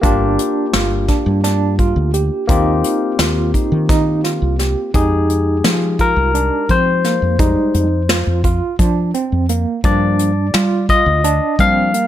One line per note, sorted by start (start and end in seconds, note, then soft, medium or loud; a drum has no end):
0.01 0.36 G1 medium
0.01 2.44 A#3 medium
0.01 2.45 D4 medium
0.01 0.65 D4 medium
0.01 2.45 F4 medium
0.01 2.46 G4 medium
0.01 kick medium
0.01 closed hi-hat medium
0.39 closed hi-hat medium
0.73 1.06 G1 medium
0.73 1.05 F4 medium
0.73 snare medium
0.73 closed hi-hat medium
1.08 1.40 D4 medium
1.08 kick medium
1.08 snare soft
1.08 closed hi-hat medium
1.26 1.92 G2 medium
1.44 1.75 D4 medium
1.44 snare soft
1.44 closed hi-hat medium
1.79 2.10 F4 medium
1.79 kick medium
1.79 closed hi-hat medium
1.96 2.29 D2 medium
2.14 2.45 G4 medium
2.14 closed hi-hat medium
2.47 2.81 D#2 medium
2.47 4.90 A#3 medium
2.47 4.90 C4 medium
2.47 3.11 D#4 medium
2.47 4.91 F4 medium
2.47 4.91 G4 medium
2.47 kick loud
2.47 closed hi-hat medium
2.84 closed hi-hat medium
3.19 3.51 D#2 medium
3.19 3.50 F4 medium
3.19 snare loud
3.19 closed hi-hat medium
3.54 3.85 D#4 medium
3.54 kick medium
3.54 closed hi-hat medium
3.72 4.38 D#3 medium
3.89 4.20 D#4 medium
3.89 kick loud
3.89 snare soft
3.89 closed hi-hat medium
4.24 4.55 F4 medium
4.24 snare soft
4.24 closed hi-hat medium
4.42 4.74 C2 medium
4.59 4.90 G4 medium
4.59 snare soft
4.59 closed hi-hat soft
4.94 5.60 F2 medium
4.94 7.36 G#3 soft
4.94 5.56 D#4 medium
4.94 7.36 D#4 medium
4.94 7.35 G4 soft
4.94 6.03 G#4 medium
4.94 kick medium
4.94 closed hi-hat medium
5.30 closed hi-hat soft
5.64 6.13 F3 medium
5.64 5.95 F4 medium
5.64 snare medium
5.64 closed hi-hat medium
5.99 6.30 F4 medium
5.99 6.72 A#4 medium
5.99 kick medium
5.99 closed hi-hat medium
6.16 6.49 C2 medium
6.35 6.65 D4 medium
6.35 closed hi-hat medium
6.69 7.18 F3 medium
6.69 7.00 C4 medium
6.69 8.41 C5 medium
6.69 kick medium
6.69 closed hi-hat medium
7.04 7.35 A#3 medium
7.04 snare soft
7.04 closed hi-hat medium
7.22 7.54 F2 medium
7.39 7.86 G3 medium
7.39 7.86 G#3 soft
7.39 8.01 D#4 medium
7.39 7.86 D#4 medium
7.39 kick medium
7.39 closed hi-hat medium
7.74 8.23 F2 medium
7.74 closed hi-hat medium
8.09 8.40 F4 medium
8.09 snare medium
8.09 closed hi-hat medium
8.27 8.59 F2 medium
8.44 8.75 F4 medium
8.44 kick medium
8.44 closed hi-hat medium
8.79 9.11 F3 medium
8.79 9.10 D4 medium
8.79 kick medium
8.79 closed hi-hat medium
9.14 9.45 C4 medium
9.14 closed hi-hat medium
9.32 9.64 F2 medium
9.49 9.80 A#3 medium
9.49 closed hi-hat soft
9.84 10.50 G2 medium
9.84 10.31 F3 soft
9.84 10.31 A#3 soft
9.84 10.46 D4 medium
9.84 10.31 D4 medium
9.84 10.85 D5 medium
9.84 kick medium
9.84 closed hi-hat medium
10.19 closed hi-hat medium
10.54 11.02 G3 medium
10.54 10.85 F4 medium
10.54 snare medium
10.54 closed hi-hat medium
10.89 11.20 F4 medium
10.89 11.61 D#5 medium
10.89 kick medium
10.89 closed hi-hat medium
11.06 11.38 D2 medium
11.24 11.55 D4 medium
11.24 closed hi-hat medium
11.59 11.91 F3 soft
11.59 12.07 G3 medium
11.59 11.91 A#3 soft
11.59 11.90 C4 medium
11.59 11.91 D4 medium
11.59 12.07 F5 loud
11.59 kick medium
11.59 closed hi-hat medium
11.94 12.07 A#3 medium
11.94 closed hi-hat medium